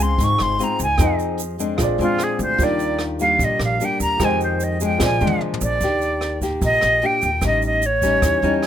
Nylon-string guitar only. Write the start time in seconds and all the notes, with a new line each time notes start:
Already playing: C#3
0.00 G#3 C4 F4
0.20 G#2
0.59 G#3 C4 F4
1.00 F3 C4 D#4 G#4
1.59 G#3 C4 D4
1.80 A#2
2.00 G#3 C4 D4
2.61 D#3 G3 A#3 D4
3.20 G3 A#3 D4
3.41 A#2
3.81 G3 A#3 D4
4.21 F2 D#3 G#3 C4
4.81 F3 G#3 D4
5.00 A#2
5.21 F3 G#3 D4
5.83 D#3 A#3 D4 G4
6.42 A#3 G4
6.62 A#2
7.03 A#3 D4 G4
7.43 A2 G3 C#4 D#4
8.03 G3 C#4 D#4
8.22 E3
8.43 G3 C#4 D#4